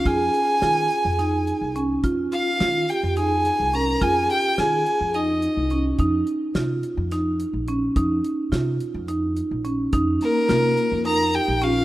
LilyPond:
<<
  \new Staff \with { instrumentName = "Violin" } { \time 7/8 \key f \minor \tempo 4 = 106 aes''2. r8 | r8 f''4 g''8 aes''4 bes''8 | aes''8 g''8 aes''4 ees''4 r8 | r2. r8 |
r2. r8 | r8 bes'4. bes''8 g''8 f''8 | }
  \new Staff \with { instrumentName = "Vibraphone" } { \time 7/8 \key f \minor aes'2. r8 | r8 f'4 g'8 aes'4 bes'8 | aes'8 g'8 aes'4 ees'4 r8 | r2. r8 |
r2. r8 | r8 bes4. bes'8 g'8 f'8 | }
  \new Staff \with { instrumentName = "Marimba" } { \time 7/8 \key f \minor f'4 f'4 ees'4 des'8 | f'4 f'4 ees'4 des'8 | f'4 f'4 ees'4 des'8 | ees'4 f'4 ees'4 des'8 |
ees'4 f'4 ees'4 des'8 | ees'4 f'4 ees'4 des'8 | }
  \new Staff \with { instrumentName = "Upright bass" } { \clef bass \time 7/8 \key f \minor f,8 r8 ees8 r16 f,4 c,8. | f,8 r8 ees8 r16 f,4 c,8. | f,8 r8 ees8 r16 f,4 c,8. | f,8 r8 c8 r16 f,4 bes,,8. |
f,8 r8 c8 r16 f,4 bes,,8. | f,8 r8 c8 r16 f,4 bes,,8. | }
  \new DrumStaff \with { instrumentName = "Drums" } \drummode { \time 7/8 <hh bd>8 hh8 <hh sn>8 hh8 <hh sn>8 hh8 hh8 | <hh bd>8 hh8 <hh sn>8 hh8 hh8 <hh sn>8 hh8 | <hh bd>8 hh8 <hh sn>8 hh8 hh8 hh8 hh8 | <hh bd>8 hh8 <hh sn>8 hh8 <hh sn>8 hh8 hh8 |
<hh bd>8 hh8 <hh sn>8 hh8 hh8 hh8 hh8 | <hh bd>8 <hh sn>8 <hh sn>8 hh8 hh8 hh8 hh8 | }
>>